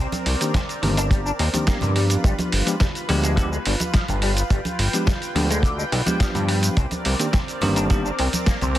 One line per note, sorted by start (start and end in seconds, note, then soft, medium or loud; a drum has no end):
0.00 1.92 C4 medium
0.00 1.93 A#4 medium
0.00 1.92 D5 medium
0.12 closed hi-hat soft
0.12 high conga medium
0.12 shaker soft
0.26 0.36 C2 medium
0.26 open hi-hat loud
0.41 0.52 D#3 medium
0.41 0.52 A#3 medium
0.41 0.52 C4 medium
0.41 0.52 D4 medium
0.41 0.52 G4 medium
0.41 closed hi-hat medium
0.41 shaker medium
0.54 0.59 C4 medium
0.54 kick loud
0.54 snare loud
0.54 closed hi-hat medium
0.54 low conga loud
0.54 shaker medium
0.69 closed hi-hat soft
0.69 shaker soft
0.82 1.32 G1 medium
0.82 0.94 D#3 medium
0.82 0.95 A#3 medium
0.82 0.95 C4 medium
0.82 0.95 D4 medium
0.82 0.95 G4 medium
0.82 open hi-hat loud
0.82 high conga medium
0.97 1.04 D4 loud
0.97 closed hi-hat medium
0.97 shaker medium
1.11 1.18 G3 medium
1.11 kick loud
1.11 closed hi-hat medium
1.11 shaker medium
1.26 1.30 D4 medium
1.26 shaker soft
1.39 1.49 D#2 loud
1.39 1.44 C4 medium
1.39 open hi-hat loud
1.53 1.64 D#3 medium
1.53 1.64 A#3 medium
1.53 1.65 C4 medium
1.53 1.65 D4 medium
1.53 1.65 G4 medium
1.53 closed hi-hat medium
1.53 high conga medium
1.53 shaker medium
1.67 2.63 F3 medium
1.67 1.75 A#3 medium
1.67 2.64 B3 medium
1.67 2.64 D4 medium
1.67 2.64 G4 medium
1.67 kick loud
1.67 snare loud
1.67 closed hi-hat medium
1.67 shaker medium
1.81 2.17 G2 medium
1.81 1.89 C3 medium
1.81 closed hi-hat soft
1.81 low conga loud
1.81 shaker soft
1.96 2.03 G3 loud
1.96 6.73 F4 medium
1.96 6.73 B4 medium
1.96 open hi-hat loud
2.10 closed hi-hat medium
2.10 shaker medium
2.24 2.34 G1 loud
2.24 2.32 G3 medium
2.24 kick loud
2.24 closed hi-hat medium
2.24 shaker medium
2.39 closed hi-hat soft
2.39 high conga loud
2.39 shaker soft
2.52 2.62 G1 medium
2.52 open hi-hat loud
2.67 2.74 F3 medium
2.67 2.74 G#3 medium
2.67 2.74 B3 medium
2.67 2.74 D4 medium
2.67 2.74 G4 medium
2.67 closed hi-hat medium
2.67 shaker medium
2.80 2.85 G3 medium
2.80 kick loud
2.80 snare loud
2.80 closed hi-hat medium
2.80 low conga loud
2.80 shaker medium
2.95 closed hi-hat soft
2.95 shaker soft
3.09 3.58 D2 medium
3.09 3.34 F3 loud
3.09 3.34 G#3 medium
3.09 3.34 B3 medium
3.09 3.34 D4 medium
3.09 3.34 G4 loud
3.09 open hi-hat loud
3.09 high conga medium
3.24 3.31 G#3 loud
3.24 closed hi-hat medium
3.24 shaker medium
3.36 3.45 D3 medium
3.36 3.49 F3 loud
3.36 3.49 G#3 medium
3.36 3.49 B3 medium
3.36 3.49 D4 loud
3.36 3.49 G4 loud
3.36 kick loud
3.36 closed hi-hat medium
3.36 shaker medium
3.52 3.56 G#3 medium
3.52 shaker soft
3.65 3.76 G1 medium
3.65 3.71 G3 medium
3.65 open hi-hat loud
3.80 closed hi-hat soft
3.80 high conga loud
3.80 shaker medium
3.94 4.02 F3 medium
3.94 kick loud
3.94 snare loud
3.94 closed hi-hat medium
3.94 shaker medium
4.08 4.43 G1 loud
4.08 4.16 G2 medium
4.08 closed hi-hat soft
4.08 low conga loud
4.08 shaker soft
4.22 4.30 G3 loud
4.22 6.75 G5 medium
4.22 open hi-hat loud
4.37 closed hi-hat medium
4.37 shaker medium
4.50 4.60 G1 loud
4.50 4.58 G3 medium
4.50 kick loud
4.50 closed hi-hat medium
4.50 shaker medium
4.65 closed hi-hat soft
4.65 high conga medium
4.65 shaker soft
4.79 4.89 G1 medium
4.79 open hi-hat loud
4.93 5.05 F3 medium
4.93 5.05 G#3 medium
4.93 5.05 B3 medium
4.93 5.05 D4 medium
4.93 5.05 G4 medium
4.93 closed hi-hat medium
4.93 shaker medium
5.06 5.12 G3 medium
5.06 kick loud
5.06 snare loud
5.06 closed hi-hat medium
5.06 low conga medium
5.06 shaker medium
5.22 closed hi-hat soft
5.22 shaker soft
5.35 5.85 D2 medium
5.35 5.47 F3 medium
5.35 5.47 G#3 medium
5.35 5.47 B3 medium
5.35 5.47 D4 medium
5.35 5.48 G4 medium
5.35 open hi-hat loud
5.35 high conga medium
5.50 5.57 G#3 loud
5.50 closed hi-hat medium
5.50 shaker medium
5.63 5.71 D3 medium
5.63 kick loud
5.63 closed hi-hat medium
5.63 shaker medium
5.78 5.82 G#3 medium
5.78 shaker soft
5.92 6.02 B1 loud
5.92 5.97 G3 medium
5.92 open hi-hat loud
6.06 6.17 F3 medium
6.06 6.17 G#3 medium
6.06 6.17 B3 medium
6.06 6.17 D4 medium
6.06 6.17 G4 medium
6.06 closed hi-hat soft
6.06 high conga medium
6.06 shaker medium
6.20 6.75 F3 medium
6.20 6.28 F3 medium
6.20 6.76 B3 medium
6.20 6.76 D4 medium
6.20 kick loud
6.20 snare loud
6.20 closed hi-hat medium
6.20 shaker medium
6.35 6.70 G2 medium
6.35 6.42 G2 medium
6.35 closed hi-hat soft
6.35 low conga medium
6.35 shaker soft
6.48 6.56 G3 loud
6.48 open hi-hat loud
6.63 closed hi-hat soft
6.63 shaker medium
6.77 6.87 C2 loud
6.77 6.85 C4 medium
6.77 8.79 C4 medium
6.77 8.79 A#4 medium
6.77 8.79 D5 medium
6.77 kick loud
6.77 closed hi-hat medium
6.77 shaker medium
6.91 closed hi-hat soft
6.91 high conga medium
6.91 shaker soft
7.05 7.15 C2 medium
7.05 open hi-hat loud
7.19 7.27 D#3 medium
7.19 7.27 A#3 medium
7.19 7.27 C4 medium
7.19 7.27 D4 medium
7.19 7.27 G4 medium
7.19 closed hi-hat medium
7.19 shaker medium
7.33 7.38 C4 medium
7.33 kick loud
7.33 snare loud
7.33 closed hi-hat medium
7.33 low conga medium
7.33 shaker medium
7.48 closed hi-hat soft
7.48 shaker soft
7.61 8.11 G1 medium
7.61 7.87 D#3 loud
7.61 7.87 A#3 medium
7.61 7.87 C4 medium
7.61 7.87 D4 medium
7.61 7.87 G4 loud
7.61 open hi-hat loud
7.61 high conga medium
7.76 7.84 D4 loud
7.76 closed hi-hat soft
7.76 shaker medium
7.90 8.02 D#3 loud
7.90 7.98 G3 medium
7.90 8.02 A#3 medium
7.90 8.02 C4 medium
7.90 8.02 D4 medium
7.90 8.02 G4 loud
7.90 kick loud
7.90 closed hi-hat medium
7.90 shaker medium
8.05 8.09 D4 medium
8.05 shaker soft
8.19 8.29 C2 medium
8.19 8.23 C4 medium
8.19 open hi-hat loud
8.33 closed hi-hat soft
8.33 high conga medium
8.33 shaker medium
8.46 8.55 A#3 medium
8.46 kick loud
8.46 snare loud
8.46 closed hi-hat medium
8.46 shaker medium
8.61 8.79 C2 loud
8.61 8.69 C3 medium
8.61 closed hi-hat soft
8.61 low conga medium
8.61 shaker soft
8.75 open hi-hat loud